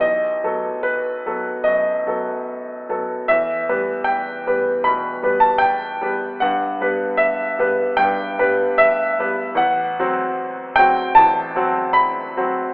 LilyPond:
<<
  \new Staff \with { instrumentName = "Grand piano" } { \time 4/4 \key e \minor \tempo 4 = 76 dis''4 b'4 dis''4. r8 | e''4 g''4 b''8. a''16 g''4 | fis''4 e''4 g''4 e''4 | fis''4. g''8 a''4 b''4 | }
  \new Staff \with { instrumentName = "Grand piano" } { \time 4/4 \key e \minor b,,8 <fis b a'>4 <fis b a'>8 fis,8 <fis b a'>4 <fis b a'>8 | e,8 <g b b'>4 <g b b'>8 b,8 <g b b'>4 <g b b'>8 | g,8 <g b b'>4 <g b b'>8 g,8 <g b b'>4 <g b b'>8 | a,,8 <fis c' fis'>4 <fis c' fis'>8 a,,8 <fis c' fis'>4 <fis c' fis'>8 | }
>>